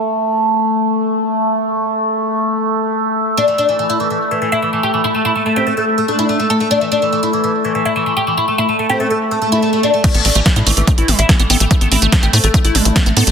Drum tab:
CC |----------------|----------------|----------------|----------------|
HH |----------------|----------------|----------------|----------------|
SD |----------------|----------------|----------------|----------------|
BD |----------------|----------------|----------------|----------------|

CC |----------------|----------------|x---------------|----------------|
HH |----------------|----------------|xxoxxxoxxxoxxxox|xxoxxxoxxxoxxxox|
SD |----------------|----------------|----o-------o---|----o-------o---|
BD |----------------|----------------|o---o---o---o---|o---o---o---o---|